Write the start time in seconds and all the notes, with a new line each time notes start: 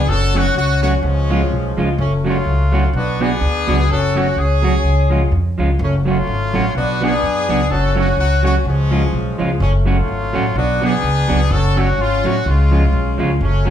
0.07 F#1 C#4 F#4 A4
0.34 F#3 A3 C#4 F#4
0.55 C#2 F#4
0.82 F#3 A3 C#4 F#4
1.02 C#2 F3 G#3 C#4
1.30 F3 G#3 C#4 F4
1.51 B1
1.77 C#2 F3 G#3 C#4 F4
1.98 F#1 F#3 A3 C#4
2.24 F#3 A3 C#4 F4 F#4
2.46 C#2
2.72 F#3 A3 C#4 F#4
2.93 B1 B3 D4 F#4
3.20 F#3 B3 D4 F#4 G#4
3.41 D2
3.67 C#2 F#3 B3 D4 F#4
3.89 F#1 C#4 F#4 A4
4.15 F#3 A3 C#4 F#4
4.36 C#2 C#4 G#4
4.62 F#3 A3 C#4 F#4
4.84 C#2
5.10 F3 G#3 C#4 F4
5.31 F2, muted clean electric guitar stroke
5.58 C#2 F3 G#3 C#4 F4
5.79 F#1 F#3 A3 C#4
6.05 F#3 A3 C#4 F4 F#4
6.27 G#1
6.53 A1 F#3 A3 C#4 F#4
6.75 B1 B3 D4 F#4
7.01 F#3 B3 D4 F#4 G#4
7.23 F#2
7.49 C#2 F#3 B3 D4 F#4
7.70 F#1 C#4 F#4 A4
7.96 F#3 A3 C#4 F#4
8.17 C#2 F#4
8.43 F#3 A3 C#4 F#4
8.65 C#2 F3 G#3 C#4
8.91 F3 G#3 C#4 F4
9.13 B1
9.38 C#2 F3 G#3 C#4 F4
9.60 F#1 F#3 A3 C#4
9.86 F#3 A3 C#4 F4 F#4
10.08 G#1
10.33 A1 F#3 A3 C#4 F#4
10.55 B1 B3 D4 F#4
10.81 F#3 B3 D4 F#4 G#4
11.03 C#2
11.28 C#2 F#3 B3 D4 F#4
11.50 F#1 C#4 F#4 A4
11.76 F#3 A3 C#4 F#4
11.98 G#1 F4
12.24 A1 F#3 A3 C#4 F#4
12.45 C#2 G#3 C#4 F4, muted clean electric guitar stroke
12.71 F3 G#3 C#4 F4
12.93 B1
13.18 C#2 F3 G#3 C#4 F4
13.41 F#1 F#3 A3 C#4
13.65 F#3 A3 C#4